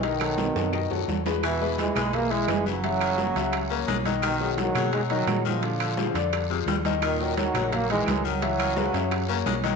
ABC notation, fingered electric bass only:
X:1
M:4/4
L:1/8
Q:1/4=172
K:Elyd
V:1 name="Fingered electric bass" clef=bass
B,,,3 F,,2 F,, E,,2- | E,,3 B,,,3 F,,,2- | F,,,3 C,,3 B,,,2- | B,,,3 B,,3 A,,2- |
A,,3 ^E,,3 D,,2- | D,,3 A,,,3 C,,2- | C,,3 F,,3 B,,,2 |]